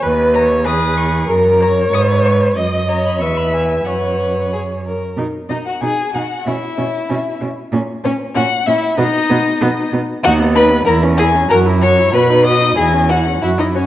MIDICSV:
0, 0, Header, 1, 5, 480
1, 0, Start_track
1, 0, Key_signature, 5, "major"
1, 0, Tempo, 633580
1, 26, Time_signature, 2, 2, 24, 8
1, 2425, Tempo, 651466
1, 4825, Tempo, 633580
1, 10435, End_track
2, 0, Start_track
2, 0, Title_t, "Violin"
2, 0, Program_c, 0, 40
2, 259, Note_on_c, 0, 82, 102
2, 319, Note_off_c, 0, 82, 0
2, 496, Note_on_c, 0, 87, 112
2, 737, Note_on_c, 0, 85, 95
2, 748, Note_off_c, 0, 87, 0
2, 978, Note_off_c, 0, 85, 0
2, 1227, Note_on_c, 0, 82, 95
2, 1287, Note_off_c, 0, 82, 0
2, 1466, Note_on_c, 0, 87, 108
2, 1526, Note_off_c, 0, 87, 0
2, 1705, Note_on_c, 0, 85, 85
2, 1766, Note_off_c, 0, 85, 0
2, 2187, Note_on_c, 0, 82, 83
2, 2298, Note_off_c, 0, 82, 0
2, 2319, Note_on_c, 0, 83, 74
2, 2422, Note_off_c, 0, 83, 0
2, 2427, Note_on_c, 0, 85, 88
2, 2548, Note_on_c, 0, 83, 72
2, 2559, Note_off_c, 0, 85, 0
2, 2669, Note_on_c, 0, 80, 77
2, 2680, Note_off_c, 0, 83, 0
2, 2903, Note_on_c, 0, 78, 68
2, 2914, Note_off_c, 0, 80, 0
2, 3391, Note_off_c, 0, 78, 0
2, 4115, Note_on_c, 0, 75, 83
2, 4162, Note_off_c, 0, 75, 0
2, 4234, Note_on_c, 0, 78, 78
2, 4349, Note_on_c, 0, 80, 88
2, 4360, Note_off_c, 0, 78, 0
2, 4588, Note_on_c, 0, 78, 80
2, 4599, Note_off_c, 0, 80, 0
2, 4826, Note_off_c, 0, 78, 0
2, 4830, Note_on_c, 0, 76, 82
2, 5535, Note_off_c, 0, 76, 0
2, 6024, Note_on_c, 0, 73, 89
2, 6084, Note_off_c, 0, 73, 0
2, 6251, Note_on_c, 0, 78, 122
2, 6492, Note_on_c, 0, 76, 100
2, 6504, Note_off_c, 0, 78, 0
2, 6731, Note_off_c, 0, 76, 0
2, 6736, Note_on_c, 0, 75, 117
2, 7439, Note_off_c, 0, 75, 0
2, 7688, Note_on_c, 0, 78, 127
2, 7749, Note_off_c, 0, 78, 0
2, 7928, Note_on_c, 0, 83, 127
2, 7989, Note_off_c, 0, 83, 0
2, 8163, Note_on_c, 0, 82, 121
2, 8224, Note_off_c, 0, 82, 0
2, 8396, Note_on_c, 0, 80, 121
2, 8637, Note_off_c, 0, 80, 0
2, 8640, Note_on_c, 0, 82, 113
2, 8701, Note_off_c, 0, 82, 0
2, 8883, Note_on_c, 0, 85, 116
2, 9122, Note_off_c, 0, 85, 0
2, 9126, Note_on_c, 0, 83, 112
2, 9361, Note_off_c, 0, 83, 0
2, 9366, Note_on_c, 0, 87, 126
2, 9604, Note_off_c, 0, 87, 0
2, 9613, Note_on_c, 0, 80, 121
2, 9861, Note_on_c, 0, 78, 102
2, 9872, Note_off_c, 0, 80, 0
2, 10101, Note_off_c, 0, 78, 0
2, 10108, Note_on_c, 0, 76, 100
2, 10155, Note_off_c, 0, 76, 0
2, 10228, Note_on_c, 0, 75, 80
2, 10276, Note_off_c, 0, 75, 0
2, 10350, Note_on_c, 0, 73, 88
2, 10410, Note_off_c, 0, 73, 0
2, 10435, End_track
3, 0, Start_track
3, 0, Title_t, "Violin"
3, 0, Program_c, 1, 40
3, 27, Note_on_c, 1, 71, 82
3, 472, Note_off_c, 1, 71, 0
3, 501, Note_on_c, 1, 68, 71
3, 981, Note_on_c, 1, 70, 73
3, 993, Note_off_c, 1, 68, 0
3, 1460, Note_on_c, 1, 71, 69
3, 1471, Note_off_c, 1, 70, 0
3, 1942, Note_off_c, 1, 71, 0
3, 1947, Note_on_c, 1, 75, 70
3, 2186, Note_on_c, 1, 73, 63
3, 2197, Note_off_c, 1, 75, 0
3, 2433, Note_on_c, 1, 71, 63
3, 2445, Note_off_c, 1, 73, 0
3, 2907, Note_off_c, 1, 71, 0
3, 2911, Note_on_c, 1, 71, 54
3, 3386, Note_off_c, 1, 71, 0
3, 3402, Note_on_c, 1, 68, 53
3, 3461, Note_off_c, 1, 68, 0
3, 3646, Note_on_c, 1, 70, 49
3, 3876, Note_off_c, 1, 70, 0
3, 4119, Note_on_c, 1, 63, 68
3, 4227, Note_off_c, 1, 63, 0
3, 4242, Note_on_c, 1, 66, 71
3, 4288, Note_off_c, 1, 66, 0
3, 4357, Note_on_c, 1, 68, 77
3, 4585, Note_off_c, 1, 68, 0
3, 4590, Note_on_c, 1, 66, 61
3, 4829, Note_on_c, 1, 64, 73
3, 4840, Note_off_c, 1, 66, 0
3, 5549, Note_off_c, 1, 64, 0
3, 6030, Note_on_c, 1, 61, 87
3, 6091, Note_off_c, 1, 61, 0
3, 6269, Note_on_c, 1, 66, 88
3, 6329, Note_off_c, 1, 66, 0
3, 6500, Note_on_c, 1, 64, 82
3, 6734, Note_off_c, 1, 64, 0
3, 6738, Note_on_c, 1, 63, 98
3, 7440, Note_off_c, 1, 63, 0
3, 7687, Note_on_c, 1, 66, 118
3, 7747, Note_off_c, 1, 66, 0
3, 7924, Note_on_c, 1, 71, 117
3, 8152, Note_off_c, 1, 71, 0
3, 8157, Note_on_c, 1, 70, 91
3, 8217, Note_off_c, 1, 70, 0
3, 8400, Note_on_c, 1, 68, 109
3, 8461, Note_off_c, 1, 68, 0
3, 8647, Note_on_c, 1, 70, 112
3, 8707, Note_off_c, 1, 70, 0
3, 8887, Note_on_c, 1, 73, 110
3, 9128, Note_on_c, 1, 71, 97
3, 9139, Note_off_c, 1, 73, 0
3, 9364, Note_on_c, 1, 75, 110
3, 9375, Note_off_c, 1, 71, 0
3, 9600, Note_off_c, 1, 75, 0
3, 9605, Note_on_c, 1, 68, 100
3, 9665, Note_off_c, 1, 68, 0
3, 9849, Note_on_c, 1, 66, 95
3, 9909, Note_off_c, 1, 66, 0
3, 10097, Note_on_c, 1, 64, 78
3, 10146, Note_off_c, 1, 64, 0
3, 10219, Note_on_c, 1, 63, 74
3, 10269, Note_off_c, 1, 63, 0
3, 10335, Note_on_c, 1, 61, 73
3, 10435, Note_off_c, 1, 61, 0
3, 10435, End_track
4, 0, Start_track
4, 0, Title_t, "Viola"
4, 0, Program_c, 2, 41
4, 19, Note_on_c, 2, 71, 75
4, 258, Note_on_c, 2, 73, 85
4, 269, Note_off_c, 2, 71, 0
4, 496, Note_on_c, 2, 71, 89
4, 508, Note_off_c, 2, 73, 0
4, 975, Note_off_c, 2, 71, 0
4, 979, Note_on_c, 2, 70, 74
4, 1216, Note_on_c, 2, 73, 90
4, 1227, Note_off_c, 2, 70, 0
4, 1946, Note_on_c, 2, 75, 69
4, 1958, Note_off_c, 2, 73, 0
4, 2433, Note_on_c, 2, 76, 76
4, 2444, Note_off_c, 2, 75, 0
4, 2914, Note_on_c, 2, 73, 58
4, 2925, Note_off_c, 2, 76, 0
4, 3638, Note_off_c, 2, 73, 0
4, 3881, Note_on_c, 2, 63, 57
4, 3940, Note_off_c, 2, 63, 0
4, 4121, Note_on_c, 2, 63, 58
4, 4180, Note_off_c, 2, 63, 0
4, 4357, Note_on_c, 2, 63, 57
4, 4416, Note_off_c, 2, 63, 0
4, 4595, Note_on_c, 2, 63, 47
4, 4654, Note_off_c, 2, 63, 0
4, 4832, Note_on_c, 2, 61, 56
4, 4893, Note_off_c, 2, 61, 0
4, 5066, Note_on_c, 2, 61, 59
4, 5127, Note_off_c, 2, 61, 0
4, 5307, Note_on_c, 2, 61, 66
4, 5368, Note_off_c, 2, 61, 0
4, 5544, Note_on_c, 2, 61, 47
4, 5605, Note_off_c, 2, 61, 0
4, 5787, Note_on_c, 2, 61, 66
4, 5847, Note_off_c, 2, 61, 0
4, 6025, Note_on_c, 2, 61, 70
4, 6086, Note_off_c, 2, 61, 0
4, 6260, Note_on_c, 2, 61, 75
4, 6320, Note_off_c, 2, 61, 0
4, 6500, Note_on_c, 2, 61, 62
4, 6561, Note_off_c, 2, 61, 0
4, 6733, Note_on_c, 2, 59, 83
4, 6794, Note_off_c, 2, 59, 0
4, 6976, Note_on_c, 2, 59, 80
4, 7036, Note_off_c, 2, 59, 0
4, 7216, Note_on_c, 2, 59, 94
4, 7277, Note_off_c, 2, 59, 0
4, 7455, Note_on_c, 2, 59, 59
4, 7516, Note_off_c, 2, 59, 0
4, 7694, Note_on_c, 2, 63, 85
4, 7811, Note_on_c, 2, 59, 75
4, 7822, Note_off_c, 2, 63, 0
4, 7930, Note_on_c, 2, 63, 80
4, 7941, Note_off_c, 2, 59, 0
4, 8049, Note_on_c, 2, 59, 72
4, 8060, Note_off_c, 2, 63, 0
4, 8168, Note_off_c, 2, 59, 0
4, 8173, Note_on_c, 2, 64, 84
4, 8290, Note_on_c, 2, 61, 70
4, 8301, Note_off_c, 2, 64, 0
4, 8410, Note_on_c, 2, 64, 71
4, 8422, Note_off_c, 2, 61, 0
4, 8531, Note_on_c, 2, 61, 78
4, 8542, Note_off_c, 2, 64, 0
4, 8646, Note_off_c, 2, 61, 0
4, 8651, Note_on_c, 2, 66, 80
4, 8768, Note_on_c, 2, 64, 72
4, 8779, Note_off_c, 2, 66, 0
4, 8891, Note_on_c, 2, 66, 76
4, 8903, Note_off_c, 2, 64, 0
4, 9008, Note_on_c, 2, 64, 75
4, 9019, Note_off_c, 2, 66, 0
4, 9124, Note_off_c, 2, 64, 0
4, 9129, Note_on_c, 2, 66, 74
4, 9248, Note_on_c, 2, 63, 66
4, 9259, Note_off_c, 2, 66, 0
4, 9363, Note_on_c, 2, 66, 58
4, 9374, Note_off_c, 2, 63, 0
4, 9487, Note_on_c, 2, 63, 68
4, 9498, Note_off_c, 2, 66, 0
4, 9597, Note_off_c, 2, 63, 0
4, 9602, Note_on_c, 2, 64, 69
4, 9730, Note_on_c, 2, 61, 62
4, 9741, Note_off_c, 2, 64, 0
4, 9852, Note_on_c, 2, 64, 64
4, 9864, Note_off_c, 2, 61, 0
4, 9972, Note_on_c, 2, 61, 56
4, 9984, Note_off_c, 2, 64, 0
4, 10089, Note_off_c, 2, 61, 0
4, 10094, Note_on_c, 2, 66, 71
4, 10218, Note_on_c, 2, 64, 57
4, 10229, Note_off_c, 2, 66, 0
4, 10346, Note_on_c, 2, 66, 48
4, 10357, Note_off_c, 2, 64, 0
4, 10435, Note_off_c, 2, 66, 0
4, 10435, End_track
5, 0, Start_track
5, 0, Title_t, "Cello"
5, 0, Program_c, 3, 42
5, 22, Note_on_c, 3, 39, 90
5, 500, Note_on_c, 3, 40, 86
5, 512, Note_off_c, 3, 39, 0
5, 976, Note_off_c, 3, 40, 0
5, 981, Note_on_c, 3, 42, 84
5, 1453, Note_off_c, 3, 42, 0
5, 1463, Note_on_c, 3, 44, 86
5, 1934, Note_off_c, 3, 44, 0
5, 1942, Note_on_c, 3, 42, 75
5, 2426, Note_on_c, 3, 40, 66
5, 2437, Note_off_c, 3, 42, 0
5, 2906, Note_off_c, 3, 40, 0
5, 2910, Note_on_c, 3, 42, 63
5, 3710, Note_off_c, 3, 42, 0
5, 3877, Note_on_c, 3, 47, 65
5, 3936, Note_off_c, 3, 47, 0
5, 4115, Note_on_c, 3, 47, 61
5, 4174, Note_off_c, 3, 47, 0
5, 4356, Note_on_c, 3, 47, 67
5, 4415, Note_off_c, 3, 47, 0
5, 4593, Note_on_c, 3, 47, 59
5, 4652, Note_off_c, 3, 47, 0
5, 4830, Note_on_c, 3, 47, 74
5, 4891, Note_off_c, 3, 47, 0
5, 5072, Note_on_c, 3, 47, 66
5, 5132, Note_off_c, 3, 47, 0
5, 5312, Note_on_c, 3, 47, 68
5, 5372, Note_off_c, 3, 47, 0
5, 5546, Note_on_c, 3, 47, 63
5, 5607, Note_off_c, 3, 47, 0
5, 5784, Note_on_c, 3, 46, 90
5, 5844, Note_off_c, 3, 46, 0
5, 6027, Note_on_c, 3, 46, 73
5, 6088, Note_off_c, 3, 46, 0
5, 6265, Note_on_c, 3, 46, 92
5, 6326, Note_off_c, 3, 46, 0
5, 6504, Note_on_c, 3, 46, 72
5, 6564, Note_off_c, 3, 46, 0
5, 6736, Note_on_c, 3, 47, 92
5, 6797, Note_off_c, 3, 47, 0
5, 6978, Note_on_c, 3, 47, 90
5, 7039, Note_off_c, 3, 47, 0
5, 7216, Note_on_c, 3, 47, 89
5, 7277, Note_off_c, 3, 47, 0
5, 7453, Note_on_c, 3, 47, 74
5, 7514, Note_off_c, 3, 47, 0
5, 7688, Note_on_c, 3, 39, 107
5, 8109, Note_off_c, 3, 39, 0
5, 8163, Note_on_c, 3, 40, 96
5, 8588, Note_off_c, 3, 40, 0
5, 8644, Note_on_c, 3, 42, 106
5, 9073, Note_off_c, 3, 42, 0
5, 9129, Note_on_c, 3, 47, 92
5, 9553, Note_off_c, 3, 47, 0
5, 9608, Note_on_c, 3, 40, 92
5, 10038, Note_off_c, 3, 40, 0
5, 10098, Note_on_c, 3, 42, 69
5, 10435, Note_off_c, 3, 42, 0
5, 10435, End_track
0, 0, End_of_file